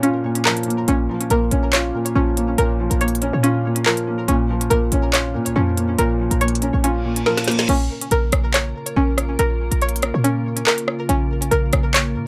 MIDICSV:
0, 0, Header, 1, 7, 480
1, 0, Start_track
1, 0, Key_signature, -5, "minor"
1, 0, Tempo, 425532
1, 992, Time_signature, 4, 2, 24, 8
1, 13843, End_track
2, 0, Start_track
2, 0, Title_t, "Synth pluck"
2, 0, Program_c, 0, 84
2, 0, Note_on_c, 0, 70, 108
2, 0, Note_on_c, 0, 73, 94
2, 32, Note_on_c, 0, 61, 92
2, 496, Note_off_c, 0, 70, 0
2, 510, Note_on_c, 0, 70, 93
2, 984, Note_off_c, 0, 61, 0
2, 991, Note_off_c, 0, 70, 0
2, 991, Note_off_c, 0, 73, 0
2, 998, Note_on_c, 0, 61, 102
2, 1475, Note_on_c, 0, 70, 87
2, 1952, Note_on_c, 0, 73, 97
2, 2417, Note_off_c, 0, 61, 0
2, 2430, Note_on_c, 0, 61, 93
2, 2899, Note_off_c, 0, 70, 0
2, 2912, Note_on_c, 0, 70, 98
2, 3383, Note_off_c, 0, 73, 0
2, 3396, Note_on_c, 0, 73, 89
2, 3858, Note_off_c, 0, 61, 0
2, 3872, Note_on_c, 0, 61, 100
2, 4340, Note_off_c, 0, 70, 0
2, 4353, Note_on_c, 0, 70, 94
2, 4816, Note_off_c, 0, 61, 0
2, 4829, Note_on_c, 0, 61, 94
2, 4833, Note_off_c, 0, 70, 0
2, 4834, Note_off_c, 0, 73, 0
2, 5305, Note_on_c, 0, 70, 96
2, 5790, Note_on_c, 0, 73, 103
2, 6255, Note_off_c, 0, 61, 0
2, 6268, Note_on_c, 0, 61, 91
2, 6738, Note_off_c, 0, 70, 0
2, 6752, Note_on_c, 0, 70, 106
2, 7218, Note_off_c, 0, 73, 0
2, 7231, Note_on_c, 0, 73, 96
2, 7699, Note_off_c, 0, 61, 0
2, 7713, Note_on_c, 0, 61, 90
2, 8177, Note_off_c, 0, 70, 0
2, 8191, Note_on_c, 0, 70, 92
2, 8665, Note_off_c, 0, 61, 0
2, 8671, Note_off_c, 0, 70, 0
2, 8672, Note_off_c, 0, 73, 0
2, 8678, Note_on_c, 0, 61, 103
2, 9155, Note_on_c, 0, 70, 95
2, 9633, Note_on_c, 0, 73, 97
2, 10097, Note_off_c, 0, 61, 0
2, 10111, Note_on_c, 0, 61, 91
2, 10580, Note_off_c, 0, 70, 0
2, 10593, Note_on_c, 0, 70, 97
2, 11063, Note_off_c, 0, 73, 0
2, 11076, Note_on_c, 0, 73, 93
2, 11539, Note_off_c, 0, 61, 0
2, 11552, Note_on_c, 0, 61, 99
2, 12020, Note_off_c, 0, 70, 0
2, 12034, Note_on_c, 0, 70, 101
2, 12496, Note_off_c, 0, 61, 0
2, 12509, Note_on_c, 0, 61, 100
2, 12513, Note_off_c, 0, 70, 0
2, 12514, Note_off_c, 0, 73, 0
2, 12987, Note_on_c, 0, 70, 95
2, 13471, Note_on_c, 0, 73, 105
2, 13843, Note_off_c, 0, 61, 0
2, 13843, Note_off_c, 0, 70, 0
2, 13843, Note_off_c, 0, 73, 0
2, 13843, End_track
3, 0, Start_track
3, 0, Title_t, "Ambient pad"
3, 0, Program_c, 1, 92
3, 8673, Note_on_c, 1, 49, 86
3, 8674, Note_on_c, 1, 58, 81
3, 8674, Note_on_c, 1, 65, 81
3, 8674, Note_on_c, 1, 70, 97
3, 12475, Note_off_c, 1, 70, 0
3, 12512, Note_on_c, 1, 70, 97
3, 13843, Note_off_c, 1, 49, 0
3, 13843, Note_off_c, 1, 58, 0
3, 13843, Note_off_c, 1, 65, 0
3, 13843, Note_off_c, 1, 70, 0
3, 13843, End_track
4, 0, Start_track
4, 0, Title_t, "Felt piano"
4, 0, Program_c, 2, 0
4, 0, Control_c, 2, 64, 127
4, 0, Note_on_c, 2, 46, 93
4, 0, Note_on_c, 2, 53, 71
4, 0, Note_on_c, 2, 58, 75
4, 0, Note_on_c, 2, 61, 92
4, 0, Note_on_c, 2, 65, 88
4, 36, Note_off_c, 2, 65, 0
4, 36, Note_on_c, 2, 65, 77
4, 254, Note_off_c, 2, 46, 0
4, 271, Note_on_c, 2, 46, 70
4, 497, Note_off_c, 2, 53, 0
4, 514, Note_on_c, 2, 53, 85
4, 733, Note_off_c, 2, 58, 0
4, 750, Note_on_c, 2, 58, 79
4, 969, Note_off_c, 2, 46, 0
4, 986, Note_on_c, 2, 46, 85
4, 990, Note_off_c, 2, 61, 0
4, 991, Note_off_c, 2, 58, 0
4, 993, Note_off_c, 2, 53, 0
4, 994, Note_off_c, 2, 65, 0
4, 1004, Control_c, 2, 64, 0
4, 1236, Control_c, 2, 64, 127
4, 1237, Note_on_c, 2, 53, 78
4, 1474, Note_on_c, 2, 58, 83
4, 1706, Note_on_c, 2, 61, 100
4, 1958, Note_on_c, 2, 65, 83
4, 2175, Note_off_c, 2, 46, 0
4, 2192, Note_on_c, 2, 46, 74
4, 2419, Note_off_c, 2, 53, 0
4, 2436, Note_on_c, 2, 53, 83
4, 2651, Note_off_c, 2, 58, 0
4, 2668, Note_on_c, 2, 58, 77
4, 2898, Note_off_c, 2, 46, 0
4, 2909, Note_off_c, 2, 61, 0
4, 2915, Note_on_c, 2, 46, 82
4, 3139, Note_off_c, 2, 53, 0
4, 3155, Note_off_c, 2, 65, 0
4, 3156, Note_on_c, 2, 53, 80
4, 3375, Note_off_c, 2, 58, 0
4, 3392, Note_on_c, 2, 58, 77
4, 3630, Note_on_c, 2, 61, 97
4, 3873, Note_on_c, 2, 65, 87
4, 4104, Note_off_c, 2, 46, 0
4, 4121, Note_on_c, 2, 46, 73
4, 4335, Note_off_c, 2, 53, 0
4, 4352, Note_on_c, 2, 53, 84
4, 4579, Note_off_c, 2, 58, 0
4, 4596, Note_on_c, 2, 58, 79
4, 4811, Note_off_c, 2, 46, 0
4, 4828, Note_on_c, 2, 46, 88
4, 4831, Note_off_c, 2, 61, 0
4, 4832, Note_off_c, 2, 53, 0
4, 4833, Note_off_c, 2, 65, 0
4, 4834, Note_off_c, 2, 58, 0
4, 4846, Control_c, 2, 64, 0
4, 5017, Control_c, 2, 64, 127
4, 5073, Note_on_c, 2, 53, 82
4, 5307, Note_on_c, 2, 58, 74
4, 5557, Note_on_c, 2, 61, 97
4, 5785, Note_on_c, 2, 65, 85
4, 6013, Note_off_c, 2, 46, 0
4, 6030, Note_on_c, 2, 46, 76
4, 6255, Note_off_c, 2, 53, 0
4, 6272, Note_on_c, 2, 53, 95
4, 6497, Note_off_c, 2, 58, 0
4, 6514, Note_on_c, 2, 58, 70
4, 6731, Note_off_c, 2, 46, 0
4, 6748, Note_on_c, 2, 46, 93
4, 6755, Note_off_c, 2, 61, 0
4, 6972, Note_off_c, 2, 53, 0
4, 6989, Note_off_c, 2, 65, 0
4, 6989, Note_on_c, 2, 53, 70
4, 7214, Note_off_c, 2, 58, 0
4, 7231, Note_on_c, 2, 58, 75
4, 7466, Note_on_c, 2, 61, 91
4, 7714, Note_on_c, 2, 65, 83
4, 7932, Note_off_c, 2, 46, 0
4, 7949, Note_on_c, 2, 46, 68
4, 8174, Note_off_c, 2, 53, 0
4, 8191, Note_on_c, 2, 53, 85
4, 8411, Note_off_c, 2, 58, 0
4, 8428, Note_on_c, 2, 58, 78
4, 8669, Note_off_c, 2, 61, 0
4, 8670, Note_off_c, 2, 58, 0
4, 8671, Note_off_c, 2, 46, 0
4, 8671, Note_off_c, 2, 53, 0
4, 8673, Note_off_c, 2, 65, 0
4, 8688, Control_c, 2, 64, 0
4, 8863, Control_c, 2, 64, 127
4, 12527, Control_c, 2, 64, 0
4, 13843, End_track
5, 0, Start_track
5, 0, Title_t, "808-style bass"
5, 0, Program_c, 3, 38
5, 992, Note_on_c, 3, 34, 113
5, 1222, Note_off_c, 3, 34, 0
5, 1471, Note_on_c, 3, 34, 109
5, 1702, Note_off_c, 3, 34, 0
5, 1713, Note_on_c, 3, 34, 103
5, 2173, Note_off_c, 3, 34, 0
5, 2432, Note_on_c, 3, 34, 109
5, 2893, Note_off_c, 3, 34, 0
5, 2912, Note_on_c, 3, 34, 113
5, 3265, Note_off_c, 3, 34, 0
5, 3280, Note_on_c, 3, 34, 102
5, 3740, Note_off_c, 3, 34, 0
5, 3760, Note_on_c, 3, 46, 102
5, 4329, Note_off_c, 3, 46, 0
5, 4832, Note_on_c, 3, 34, 109
5, 5293, Note_off_c, 3, 34, 0
5, 5311, Note_on_c, 3, 34, 108
5, 5542, Note_off_c, 3, 34, 0
5, 5551, Note_on_c, 3, 34, 109
5, 6032, Note_on_c, 3, 46, 97
5, 6048, Note_off_c, 3, 34, 0
5, 6159, Note_on_c, 3, 34, 100
5, 6176, Note_off_c, 3, 46, 0
5, 6266, Note_off_c, 3, 34, 0
5, 6272, Note_on_c, 3, 41, 109
5, 6733, Note_off_c, 3, 41, 0
5, 6753, Note_on_c, 3, 34, 107
5, 7105, Note_off_c, 3, 34, 0
5, 7119, Note_on_c, 3, 34, 101
5, 7580, Note_off_c, 3, 34, 0
5, 7599, Note_on_c, 3, 34, 100
5, 8168, Note_off_c, 3, 34, 0
5, 8672, Note_on_c, 3, 34, 111
5, 8902, Note_off_c, 3, 34, 0
5, 9153, Note_on_c, 3, 34, 112
5, 9383, Note_off_c, 3, 34, 0
5, 9392, Note_on_c, 3, 34, 107
5, 9853, Note_off_c, 3, 34, 0
5, 10112, Note_on_c, 3, 34, 111
5, 10573, Note_off_c, 3, 34, 0
5, 10593, Note_on_c, 3, 34, 112
5, 10945, Note_off_c, 3, 34, 0
5, 10959, Note_on_c, 3, 34, 98
5, 11420, Note_off_c, 3, 34, 0
5, 11440, Note_on_c, 3, 46, 104
5, 12009, Note_off_c, 3, 46, 0
5, 12512, Note_on_c, 3, 34, 115
5, 12973, Note_off_c, 3, 34, 0
5, 12991, Note_on_c, 3, 34, 105
5, 13222, Note_off_c, 3, 34, 0
5, 13232, Note_on_c, 3, 34, 111
5, 13713, Note_on_c, 3, 46, 104
5, 13729, Note_off_c, 3, 34, 0
5, 13843, Note_off_c, 3, 46, 0
5, 13843, End_track
6, 0, Start_track
6, 0, Title_t, "Reverse cymbal"
6, 0, Program_c, 4, 119
6, 7712, Note_on_c, 4, 60, 86
6, 8672, Note_off_c, 4, 60, 0
6, 13843, End_track
7, 0, Start_track
7, 0, Title_t, "Drums"
7, 36, Note_on_c, 9, 42, 92
7, 149, Note_off_c, 9, 42, 0
7, 399, Note_on_c, 9, 42, 86
7, 511, Note_on_c, 9, 39, 114
7, 512, Note_off_c, 9, 42, 0
7, 624, Note_off_c, 9, 39, 0
7, 639, Note_on_c, 9, 42, 57
7, 715, Note_off_c, 9, 42, 0
7, 715, Note_on_c, 9, 42, 55
7, 794, Note_off_c, 9, 42, 0
7, 794, Note_on_c, 9, 42, 60
7, 907, Note_off_c, 9, 42, 0
7, 992, Note_on_c, 9, 42, 84
7, 1104, Note_off_c, 9, 42, 0
7, 1360, Note_on_c, 9, 42, 78
7, 1470, Note_off_c, 9, 42, 0
7, 1470, Note_on_c, 9, 42, 81
7, 1583, Note_off_c, 9, 42, 0
7, 1708, Note_on_c, 9, 42, 76
7, 1821, Note_off_c, 9, 42, 0
7, 1952, Note_on_c, 9, 39, 116
7, 1957, Note_on_c, 9, 42, 99
7, 2065, Note_off_c, 9, 39, 0
7, 2070, Note_off_c, 9, 42, 0
7, 2321, Note_on_c, 9, 42, 87
7, 2433, Note_off_c, 9, 42, 0
7, 2675, Note_on_c, 9, 42, 87
7, 2788, Note_off_c, 9, 42, 0
7, 2913, Note_on_c, 9, 42, 81
7, 3026, Note_off_c, 9, 42, 0
7, 3281, Note_on_c, 9, 42, 78
7, 3393, Note_off_c, 9, 42, 0
7, 3393, Note_on_c, 9, 42, 50
7, 3473, Note_off_c, 9, 42, 0
7, 3473, Note_on_c, 9, 42, 66
7, 3554, Note_off_c, 9, 42, 0
7, 3554, Note_on_c, 9, 42, 82
7, 3629, Note_off_c, 9, 42, 0
7, 3629, Note_on_c, 9, 42, 75
7, 3742, Note_off_c, 9, 42, 0
7, 3878, Note_on_c, 9, 42, 96
7, 3990, Note_off_c, 9, 42, 0
7, 4240, Note_on_c, 9, 42, 88
7, 4352, Note_on_c, 9, 39, 112
7, 4353, Note_off_c, 9, 42, 0
7, 4465, Note_off_c, 9, 39, 0
7, 4480, Note_on_c, 9, 42, 67
7, 4593, Note_off_c, 9, 42, 0
7, 4832, Note_on_c, 9, 42, 86
7, 4945, Note_off_c, 9, 42, 0
7, 5201, Note_on_c, 9, 42, 78
7, 5311, Note_off_c, 9, 42, 0
7, 5311, Note_on_c, 9, 42, 82
7, 5423, Note_off_c, 9, 42, 0
7, 5548, Note_on_c, 9, 42, 79
7, 5661, Note_off_c, 9, 42, 0
7, 5792, Note_on_c, 9, 39, 115
7, 5797, Note_on_c, 9, 42, 97
7, 5905, Note_off_c, 9, 39, 0
7, 5909, Note_off_c, 9, 42, 0
7, 6159, Note_on_c, 9, 42, 84
7, 6272, Note_off_c, 9, 42, 0
7, 6514, Note_on_c, 9, 42, 89
7, 6627, Note_off_c, 9, 42, 0
7, 6752, Note_on_c, 9, 42, 83
7, 6864, Note_off_c, 9, 42, 0
7, 7120, Note_on_c, 9, 42, 80
7, 7231, Note_off_c, 9, 42, 0
7, 7231, Note_on_c, 9, 42, 70
7, 7312, Note_off_c, 9, 42, 0
7, 7312, Note_on_c, 9, 42, 68
7, 7391, Note_off_c, 9, 42, 0
7, 7391, Note_on_c, 9, 42, 66
7, 7467, Note_off_c, 9, 42, 0
7, 7467, Note_on_c, 9, 42, 78
7, 7580, Note_off_c, 9, 42, 0
7, 7716, Note_on_c, 9, 42, 97
7, 7829, Note_off_c, 9, 42, 0
7, 8079, Note_on_c, 9, 42, 85
7, 8192, Note_off_c, 9, 42, 0
7, 8192, Note_on_c, 9, 38, 58
7, 8304, Note_off_c, 9, 38, 0
7, 8319, Note_on_c, 9, 38, 62
7, 8319, Note_on_c, 9, 42, 57
7, 8395, Note_off_c, 9, 42, 0
7, 8395, Note_on_c, 9, 42, 57
7, 8432, Note_off_c, 9, 38, 0
7, 8433, Note_on_c, 9, 38, 92
7, 8476, Note_off_c, 9, 42, 0
7, 8476, Note_on_c, 9, 42, 60
7, 8546, Note_off_c, 9, 38, 0
7, 8560, Note_on_c, 9, 38, 95
7, 8588, Note_off_c, 9, 42, 0
7, 8672, Note_on_c, 9, 42, 87
7, 8673, Note_off_c, 9, 38, 0
7, 8673, Note_on_c, 9, 49, 104
7, 8785, Note_off_c, 9, 42, 0
7, 8785, Note_off_c, 9, 49, 0
7, 9040, Note_on_c, 9, 42, 81
7, 9150, Note_off_c, 9, 42, 0
7, 9150, Note_on_c, 9, 42, 82
7, 9263, Note_off_c, 9, 42, 0
7, 9388, Note_on_c, 9, 42, 77
7, 9393, Note_on_c, 9, 37, 104
7, 9501, Note_off_c, 9, 42, 0
7, 9506, Note_off_c, 9, 37, 0
7, 9632, Note_on_c, 9, 39, 119
7, 9637, Note_on_c, 9, 42, 101
7, 9745, Note_off_c, 9, 39, 0
7, 9749, Note_off_c, 9, 42, 0
7, 9999, Note_on_c, 9, 42, 87
7, 10112, Note_off_c, 9, 42, 0
7, 10352, Note_on_c, 9, 37, 94
7, 10354, Note_on_c, 9, 42, 92
7, 10465, Note_off_c, 9, 37, 0
7, 10467, Note_off_c, 9, 42, 0
7, 10592, Note_on_c, 9, 42, 85
7, 10704, Note_off_c, 9, 42, 0
7, 10960, Note_on_c, 9, 42, 82
7, 11072, Note_off_c, 9, 42, 0
7, 11072, Note_on_c, 9, 42, 51
7, 11152, Note_off_c, 9, 42, 0
7, 11152, Note_on_c, 9, 42, 69
7, 11232, Note_off_c, 9, 42, 0
7, 11232, Note_on_c, 9, 42, 83
7, 11307, Note_off_c, 9, 42, 0
7, 11307, Note_on_c, 9, 42, 80
7, 11312, Note_on_c, 9, 37, 98
7, 11420, Note_off_c, 9, 42, 0
7, 11425, Note_off_c, 9, 37, 0
7, 11556, Note_on_c, 9, 42, 94
7, 11669, Note_off_c, 9, 42, 0
7, 11919, Note_on_c, 9, 42, 88
7, 12031, Note_on_c, 9, 39, 118
7, 12032, Note_off_c, 9, 42, 0
7, 12144, Note_off_c, 9, 39, 0
7, 12159, Note_on_c, 9, 42, 69
7, 12271, Note_on_c, 9, 37, 95
7, 12272, Note_off_c, 9, 42, 0
7, 12383, Note_off_c, 9, 37, 0
7, 12512, Note_on_c, 9, 42, 86
7, 12624, Note_off_c, 9, 42, 0
7, 12881, Note_on_c, 9, 42, 81
7, 12990, Note_off_c, 9, 42, 0
7, 12990, Note_on_c, 9, 42, 81
7, 13103, Note_off_c, 9, 42, 0
7, 13228, Note_on_c, 9, 42, 77
7, 13233, Note_on_c, 9, 37, 106
7, 13341, Note_off_c, 9, 42, 0
7, 13346, Note_off_c, 9, 37, 0
7, 13472, Note_on_c, 9, 39, 116
7, 13476, Note_on_c, 9, 42, 100
7, 13584, Note_off_c, 9, 39, 0
7, 13589, Note_off_c, 9, 42, 0
7, 13843, End_track
0, 0, End_of_file